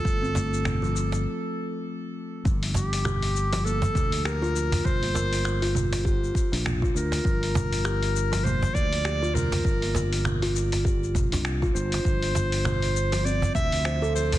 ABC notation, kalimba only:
X:1
M:4/4
L:1/16
Q:"Swing 16ths" 1/4=100
K:Gdor
V:1 name="Kalimba"
A, C A,3 F, F,2 z8 | F,4 G z2 F, B,4 G F F,2- | F, B, B z2 F3 G z2 D z F D z | F,4 G z2 F, B,4 G F F,2- |
F, B, B z2 F3 G z2 D z F D z | F,4 c z2 F, C4 c A F,2 |]